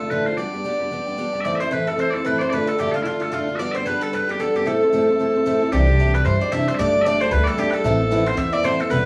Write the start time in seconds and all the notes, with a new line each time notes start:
Already playing: A4
0.00 D3 A3 D4 F4
0.10 D2 A2 D3 A3 D4 F4 B4
0.26 D3 A3 D4 F4 C5
0.37 G3 B3 D4 G4 D5
0.53 B3 D4 G4
0.64 G3 B3 D4 G4
0.80 B3 D4 G4
0.91 G3 B3 D4 G4
1.06 B3 D4 G4
1.17 G3 B3 D4 G4
1.33 B3 D4 G4
1.41 A2 D5 E5
1.45 E3 A3 C4 E4 D5
1.55 E5
1.60 A3 C4 E4 C5
1.71 A2 E3 A3 C4 E4 B4
1.87 A3 C4 E4 A4
1.97 E3 A3 C4 E4 C5
2.10 E4 A4 D5
2.14 A3 C4
2.25 A2 E3 A3 C4 E4 B4
2.38 A3 E4 C5 D5
2.43 C4
2.50 A2 D3 A3 D4 F4 B4 D5
2.67 A3 D4 F4 A4
2.79 A2 D3 A3 D4 F4 G4
2.91 F4 A4
2.96 A3 D4
3.02 D3 A3 E4 F4
3.07 D4 F4
3.20 A3 D4 F4 A4
3.32 A2 D3 A3 D4 F4
3.48 A3 D4 F4
3.56 G3 D5 E5
3.60 B3 D4 G4
3.72 G4 C5 E5
3.76 B3 D4 C5
3.86 G3 B3 D4 G4 B4
4.01 B3 D4 G4 A4
4.13 G3 B3 D4 G4 B4
4.27 B3 D4 G4
4.40 G3 B3 D4 G4 A4
4.55 B3 D4 G4
4.66 A2 A3 C4 E4 A4
4.82 C4 E4 A4
4.93 A2 A3 C4 E4 A4
5.08 C4 E4 A4
5.19 A3 C4 E4 A4
5.34 C4 E4 A4
5.46 A2 A3 C4 E4 A4
5.61 C4 E4 A4
5.72 C2 C3 E3 G3 D4 G4
5.87 G3 D4 G4
5.99 C3 E3 G3 D4 G4
6.14 G3 D4 G4 B4
6.25 G2 E3 G3 D4 G4 C5
6.41 G3 D4 G4 D5
6.52 C3 E3 G3 D4 G4 E5
6.67 G3 D4 G4 C5
6.75 G3 E5
6.79 G1 A3 D4 G4 D5
6.94 A3 D4 G4
7.02 G3 D5 E5
7.06 A3 D4 G4 D5
7.20 A3 D4 G4 C5
7.31 D2 G3 A3 D4 G4 B4
7.44 D4 G4 A4 D5
7.48 A3
7.57 G3 A3 D4 G4
7.70 G4 A4 B4
7.74 A3 D4 A4
7.84 A1 A2 E3 B3 C4 E4 A4
7.99 B3 C4 E4
8.11 A2 E3 B3 C4 E4 B4
8.25 B3 C4 E4 C5
8.37 E2 E3 B3 C4 E4 E5
8.52 B3 C4 E4 D5
8.63 A2 E3 B3 C4 E4 C5
8.78 B3 C4 E4 A4
8.89 E1 E3 G3 B3 G4 B4